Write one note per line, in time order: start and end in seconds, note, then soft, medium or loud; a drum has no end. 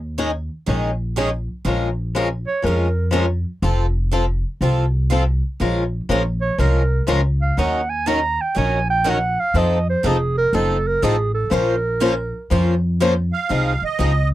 0.00 0.47 D#2 medium
0.18 0.30 D#3 medium
0.18 0.30 G#3 medium
0.18 0.30 C#4 medium
0.18 0.30 D#4 medium
0.18 0.30 G#4 medium
0.67 1.46 A#1 medium
0.67 0.89 D#3 medium
0.67 0.90 G#3 medium
0.67 0.90 C#4 medium
0.67 0.90 D#4 medium
0.67 0.90 G#4 medium
1.18 1.29 D#3 medium
1.18 1.29 G#3 medium
1.18 1.29 C#4 medium
1.18 1.29 D#4 loud
1.18 1.29 G#4 medium
1.65 2.44 A#1 medium
1.65 1.88 F3 medium
1.65 1.88 G#3 medium
1.65 1.89 C#4 medium
1.65 1.89 F4 medium
1.65 1.89 A#4 medium
2.15 2.27 F3 medium
2.15 2.27 G#3 medium
2.15 2.27 C#4 medium
2.15 2.27 F4 medium
2.15 2.27 A#4 medium
2.47 2.67 C#5 medium
2.62 3.43 F2 medium
2.62 2.85 F3 medium
2.62 2.86 G#3 medium
2.62 2.86 C#4 medium
2.62 2.86 F4 medium
2.62 2.86 A#4 medium
2.62 3.14 A#4 medium
2.68 2.88 C#4 medium
3.11 3.24 F3 medium
3.11 3.25 G#3 medium
3.11 3.25 C#4 medium
3.11 3.25 F4 medium
3.11 3.25 A#4 medium
3.62 4.42 F1 medium
3.62 3.85 F3 medium
3.62 3.85 C4 medium
3.62 3.85 F4 medium
3.62 3.86 A4 medium
4.13 4.24 F3 medium
4.13 4.24 C4 medium
4.13 4.24 F4 medium
4.13 4.24 A4 medium
4.61 5.40 C2 medium
4.61 4.84 F3 medium
4.61 4.84 C4 medium
4.61 4.84 F4 medium
4.61 4.84 A4 medium
5.11 5.23 F3 medium
5.11 5.23 C4 medium
5.11 5.23 F4 medium
5.11 5.23 A4 medium
5.60 6.00 A#1 medium
5.60 5.82 F3 medium
5.60 5.83 G#3 medium
5.60 5.82 C#4 medium
5.60 5.83 F4 medium
5.60 5.83 A#4 medium
6.09 6.51 A#1 medium
6.09 6.21 F3 medium
6.09 6.21 G#3 medium
6.09 6.21 C#4 medium
6.09 6.21 F4 medium
6.09 6.21 A#4 medium
6.41 6.61 C#5 medium
6.58 7.01 C2 medium
6.58 6.81 F3 medium
6.58 6.81 G#3 medium
6.58 6.81 C#4 medium
6.58 6.81 F4 medium
6.58 7.08 A#4 medium
6.58 6.81 A#4 medium
7.07 7.50 C#2 medium
7.07 7.19 F3 medium
7.07 7.20 G#3 medium
7.07 7.20 C#4 medium
7.07 7.20 F4 medium
7.07 7.20 A#4 loud
7.42 7.60 F5 medium
7.57 8.37 D#2 medium
7.57 7.79 D#3 medium
7.57 7.80 F#3 medium
7.57 7.80 C#4 medium
7.57 7.80 D#4 medium
7.57 7.80 A#4 medium
7.57 7.91 F#5 medium
7.90 8.09 G#5 loud
8.07 8.19 D#3 medium
8.07 8.19 F#3 medium
8.07 8.19 C#4 medium
8.07 8.19 D#4 medium
8.07 8.19 A#4 medium
8.07 8.43 A#5 loud
8.41 8.59 G5 medium
8.56 9.35 A#1 medium
8.56 8.79 D#3 medium
8.56 8.79 F#3 medium
8.56 8.79 C#4 medium
8.56 8.79 D#4 medium
8.56 8.79 A#4 medium
8.56 8.89 G#5 loud
8.90 9.11 G5 medium
9.05 9.17 D#3 medium
9.05 9.18 F#3 loud
9.05 9.18 C#4 medium
9.05 9.18 D#4 medium
9.05 9.18 A#4 loud
9.09 9.42 F#5 medium
9.40 9.59 F5 loud
9.54 9.94 F2 medium
9.54 9.77 F3 medium
9.54 9.77 C4 medium
9.54 9.78 D#4 medium
9.54 9.78 A4 medium
9.54 9.89 D#5 medium
9.90 10.07 C5 loud
10.04 10.46 F1 medium
10.04 10.16 F3 medium
10.04 10.17 C4 medium
10.04 10.17 D#4 medium
10.04 10.37 G#4 medium
10.04 10.17 A4 medium
10.37 10.57 A#4 loud
10.53 10.95 F#1 medium
10.53 10.76 F3 medium
10.53 10.76 C4 medium
10.53 10.76 D#4 medium
10.53 10.76 A4 medium
10.53 10.89 A4 medium
10.87 11.05 A#4 loud
11.02 11.45 A1 medium
11.02 11.14 F3 medium
11.02 11.15 C4 medium
11.02 11.15 D#4 medium
11.02 11.34 G#4 medium
11.02 11.15 A4 loud
11.34 11.55 A4 medium
11.50 12.31 A#1 medium
11.50 11.73 F3 medium
11.50 11.74 A#3 medium
11.50 11.74 C#4 medium
11.50 11.74 F4 medium
11.50 12.52 A#4 medium
11.50 11.74 C5 medium
12.01 12.13 F3 medium
12.01 12.13 A#3 medium
12.01 12.13 C#4 medium
12.01 12.13 F4 medium
12.01 12.14 C5 loud
12.50 13.30 F2 medium
12.50 12.73 F3 medium
12.50 12.73 A#3 medium
12.50 12.73 C#4 medium
12.50 12.74 F4 medium
12.50 12.74 C5 medium
13.01 13.12 F3 medium
13.01 13.13 A#3 medium
13.01 13.13 C#4 medium
13.01 13.13 F4 medium
13.01 13.13 C5 loud
13.33 13.84 F5 medium
13.49 13.80 C2 medium
13.49 13.72 F3 medium
13.49 13.72 C4 medium
13.49 13.72 D#4 medium
13.49 13.73 G#4 medium
13.82 14.29 D#5 medium
13.82 muted upright bass stroke soft
13.99 14.34 C#2 medium
13.99 14.11 F3 medium
13.99 14.11 C4 medium
13.99 14.12 D#4 medium
13.99 14.12 G#4 medium